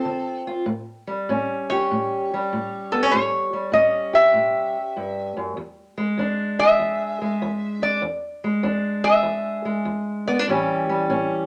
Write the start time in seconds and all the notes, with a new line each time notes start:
Already playing: C4 F4 A4
0.05 D3
0.47 F4
0.66 A2
1.07 G3
1.29 A2 C#4
1.70 G4 C#5
1.91 A2
2.34 G3
2.53 A2
2.92 B3 A4
3.03 C#4
3.11 A2 C#5
3.53 G3
3.72 A2 C#4 D#5
4.13 G4 E5
4.34 A2
4.97 G2
5.37 F#2
5.57 E2
5.98 G#3
6.17 E2 D4
6.59 G#4 E5
6.79 E2
7.22 G#3
7.42 E2
7.82 D4 D5
8.02 E2
8.44 G#3
8.63 E2 D4
9.04 G#4 E5
9.23 E2
9.65 G#3
9.85 E2
10.28 B3 D5
10.39 D4
10.48 A2 E3 G3 C#4 G4
10.89 G3
11.10 A2 C#4